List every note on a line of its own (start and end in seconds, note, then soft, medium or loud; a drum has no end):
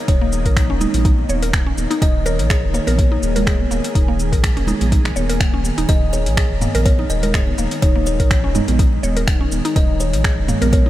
0.00 10.90 D#3 medium
0.00 5.85 A#3 medium
0.00 2.00 D#4 loud
0.08 0.47 D#1 loud
0.08 0.20 D#4 medium
0.08 0.53 C#5 medium
0.08 kick loud
0.08 closed hi-hat medium
0.08 shaker soft
0.21 0.31 A#3 medium
0.32 muted conga soft
0.32 shaker medium
0.45 0.71 A#1 medium
0.45 0.56 A#4 medium
0.45 kick medium
0.45 closed hi-hat soft
0.45 shaker soft
0.57 finger snap medium
0.57 kick loud
0.57 closed hi-hat medium
0.57 shaker soft
0.70 0.86 D#1 loud
0.70 0.80 C#4 medium
0.81 0.93 D#4 medium
0.81 muted conga soft
0.81 high conga medium
0.81 low conga medium
0.81 shaker medium
0.94 1.24 A#1 loud
0.94 closed hi-hat soft
0.94 high conga medium
0.94 low conga medium
0.94 shaker soft
1.05 1.18 D#4 medium
1.05 kick loud
1.05 closed hi-hat medium
1.05 shaker soft
1.19 muted conga soft
1.29 1.73 D#1 loud
1.29 1.41 C#5 medium
1.29 high conga medium
1.29 shaker medium
1.43 1.52 A#4 medium
1.43 closed hi-hat soft
1.43 shaker soft
1.53 finger snap loud
1.53 kick loud
1.53 closed hi-hat medium
1.53 muted conga soft
1.53 shaker soft
1.66 1.76 C#4 medium
1.77 1.87 D#1 medium
1.77 high conga medium
1.77 shaker medium
1.91 2.00 D#4 loud
1.91 closed hi-hat soft
1.91 muted conga medium
1.91 shaker medium
2.02 2.40 D#1 loud
2.02 2.14 D#4 medium
2.02 5.88 G#4 loud
2.02 2.27 D#5 loud
2.02 kick loud
2.02 closed hi-hat medium
2.02 shaker soft
2.25 2.38 A#4 loud
2.25 2.73 C#5 loud
2.25 muted conga medium
2.25 shaker medium
2.39 2.65 A#1 medium
2.39 closed hi-hat soft
2.39 shaker soft
2.50 2.63 G#4 loud
2.50 finger snap loud
2.50 kick loud
2.50 closed hi-hat medium
2.50 shaker soft
2.63 2.80 D#1 loud
2.74 2.86 A#3 medium
2.74 5.37 C#5 medium
2.74 muted conga soft
2.74 high conga medium
2.74 shaker medium
2.87 3.18 A#1 loud
2.87 2.93 A#4 loud
2.87 closed hi-hat soft
2.87 high conga medium
2.87 shaker soft
2.98 kick loud
2.98 closed hi-hat medium
2.98 high conga loud
2.98 shaker soft
3.12 3.22 D#4 medium
3.12 muted conga soft
3.23 3.66 D#1 loud
3.23 shaker medium
3.36 3.46 A#4 medium
3.36 closed hi-hat soft
3.36 low conga loud
3.36 shaker soft
3.47 3.59 G#4 loud
3.47 finger snap loud
3.47 kick loud
3.47 closed hi-hat medium
3.47 shaker soft
3.60 high conga medium
3.71 3.80 D#1 medium
3.71 3.83 A#3 medium
3.71 shaker medium
3.84 closed hi-hat soft
3.84 muted conga soft
3.84 shaker medium
3.95 4.34 D#1 loud
3.95 4.07 D#4 medium
3.95 kick loud
3.95 closed hi-hat medium
3.95 shaker soft
4.08 4.18 A#3 medium
4.19 muted conga medium
4.19 shaker medium
4.32 4.58 A#1 medium
4.32 4.42 A#4 medium
4.32 kick medium
4.32 closed hi-hat soft
4.32 shaker soft
4.44 finger snap loud
4.44 kick loud
4.44 closed hi-hat medium
4.44 shaker soft
4.57 4.73 D#1 loud
4.57 4.67 C#4 medium
4.57 closed hi-hat soft
4.67 4.80 D#4 medium
4.67 muted conga soft
4.67 high conga medium
4.67 low conga loud
4.67 shaker medium
4.81 5.11 A#1 medium
4.81 closed hi-hat soft
4.81 high conga medium
4.81 low conga medium
4.81 shaker soft
4.92 5.05 D#4 medium
4.92 kick loud
4.92 closed hi-hat medium
4.92 shaker soft
5.05 finger snap medium
5.05 closed hi-hat soft
5.05 muted conga medium
5.16 5.72 D#1 medium
5.16 5.28 C#5 medium
5.16 high conga medium
5.16 shaker medium
5.29 5.39 A#4 medium
5.29 closed hi-hat soft
5.29 shaker soft
5.40 finger snap loud
5.40 kick loud
5.40 closed hi-hat medium
5.40 muted conga soft
5.40 shaker soft
5.54 5.64 C#4 medium
5.64 high conga medium
5.64 shaker medium
5.78 5.86 D#1 medium
5.78 5.88 D#4 medium
5.78 closed hi-hat soft
5.78 muted conga medium
5.78 shaker medium
5.89 6.28 D#1 loud
5.89 10.90 G#3 medium
5.89 6.01 D#4 medium
5.89 9.75 D#4 medium
5.89 6.11 D#5 loud
5.89 kick loud
5.89 closed hi-hat medium
5.89 shaker soft
6.13 6.84 C#5 loud
6.13 muted conga medium
6.13 shaker medium
6.26 6.52 A#1 medium
6.26 closed hi-hat soft
6.26 shaker medium
6.37 6.50 G#4 loud
6.37 finger snap loud
6.37 kick loud
6.37 closed hi-hat medium
6.37 shaker soft
6.50 6.67 D#1 loud
6.61 6.73 A#3 medium
6.61 mid tom medium
6.61 muted conga soft
6.61 high conga medium
6.61 shaker medium
6.74 7.05 A#1 medium
6.74 6.81 A#4 loud
6.74 closed hi-hat soft
6.74 high conga loud
6.74 shaker soft
6.86 6.98 A#4 medium
6.86 7.11 C#5 loud
6.86 kick loud
6.86 closed hi-hat medium
6.86 high conga loud
6.86 shaker soft
6.99 7.09 D#4 medium
6.99 muted conga medium
7.10 7.53 D#1 loud
7.10 7.85 D#5 loud
7.10 shaker medium
7.23 7.33 A#4 medium
7.23 closed hi-hat soft
7.23 low conga loud
7.23 shaker soft
7.34 7.47 G#4 loud
7.34 finger snap loud
7.34 kick loud
7.34 closed hi-hat medium
7.34 mid tom medium
7.34 shaker soft
7.47 high conga medium
7.58 7.68 D#1 medium
7.58 7.70 A#3 medium
7.58 shaker loud
7.71 closed hi-hat soft
7.71 muted conga medium
7.71 shaker medium
7.82 8.21 D#1 loud
7.82 7.94 D#4 medium
7.82 8.05 C#5 loud
7.82 kick loud
7.82 closed hi-hat medium
7.82 shaker soft
7.96 8.05 A#3 medium
8.06 8.99 C#5 medium
8.06 muted conga medium
8.06 shaker medium
8.20 8.45 A#1 medium
8.20 8.30 A#4 medium
8.20 kick medium
8.20 closed hi-hat soft
8.20 shaker soft
8.31 finger snap loud
8.31 kick loud
8.31 closed hi-hat medium
8.31 shaker soft
8.44 8.61 D#1 loud
8.44 8.54 C#4 medium
8.55 8.67 D#4 medium
8.55 mid tom medium
8.55 muted conga soft
8.55 high conga medium
8.55 low conga loud
8.55 shaker medium
8.68 8.98 A#1 loud
8.68 closed hi-hat soft
8.68 high conga loud
8.68 low conga loud
8.68 shaker medium
8.79 8.92 D#4 medium
8.79 kick loud
8.79 closed hi-hat medium
8.79 shaker soft
8.93 muted conga medium
9.03 9.47 D#1 loud
9.03 9.15 C#5 medium
9.03 high conga medium
9.03 shaker loud
9.17 9.26 A#4 medium
9.17 closed hi-hat soft
9.17 shaker medium
9.28 finger snap loud
9.28 kick loud
9.28 closed hi-hat medium
9.28 shaker soft
9.41 9.51 C#4 medium
9.52 9.61 D#1 medium
9.52 high conga medium
9.52 shaker medium
9.65 9.75 D#4 loud
9.65 closed hi-hat soft
9.65 shaker medium
9.76 10.15 D#1 loud
9.76 10.90 C#4 medium
9.76 9.88 D#4 medium
9.76 10.01 D#5 loud
9.76 kick loud
9.76 closed hi-hat medium
9.76 shaker soft
10.00 10.72 C#5 medium
10.00 muted conga soft
10.00 shaker loud
10.13 10.39 A#1 medium
10.13 closed hi-hat soft
10.13 shaker medium
10.24 10.37 G#4 loud
10.24 finger snap loud
10.24 kick loud
10.24 closed hi-hat medium
10.24 shaker soft
10.37 10.54 D#1 loud
10.48 10.60 A#3 medium
10.48 mid tom medium
10.48 muted conga soft
10.48 high conga medium
10.48 shaker medium
10.61 10.90 A#1 medium
10.61 10.68 A#4 loud
10.61 closed hi-hat soft
10.61 high conga loud
10.61 shaker medium
10.73 10.85 A#4 medium
10.73 10.90 C#5 medium
10.73 kick loud
10.73 closed hi-hat medium
10.73 high conga loud
10.73 shaker soft
10.86 10.90 D#4 medium
10.86 muted conga medium